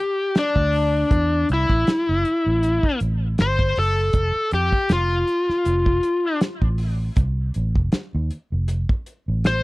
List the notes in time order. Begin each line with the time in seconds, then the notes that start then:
Already playing: G4
0.35 D4, snare, closed hi-hat
0.56 D2, kick
0.73 open hi-hat
1.11 E2, kick, closed hi-hat
1.49 C2, closed hi-hat
1.53 E4
1.70 A1, kick
1.87 snare, closed hi-hat
2.09 F#1
2.25 closed hi-hat
2.46 A1
2.63 closed hi-hat
2.83 kick
3.00 A1, closed hi-hat
3.38 G1 C5, snare, closed hi-hat
3.59 kick
3.76 F#1 A4, open hi-hat
4.13 F1, kick, closed hi-hat
4.51 F2 G4, closed hi-hat
4.72 kick
4.89 F1 F4, snare, closed hi-hat
5.27 closed hi-hat
5.49 muted fingered electric bass stroke, snare
5.65 F1, closed hi-hat
5.86 kick
6.03 closed hi-hat
6.41 snare, closed hi-hat
6.62 A1, kick
6.78 open hi-hat
7.16 C2, kick, closed hi-hat
7.54 A1, closed hi-hat
7.75 F1, kick
7.92 snare, closed hi-hat
8.15 D#2
8.31 closed hi-hat
8.52 F1
8.68 closed hi-hat
8.89 kick
9.06 closed hi-hat
9.28 A1
9.44 C5, snare, closed hi-hat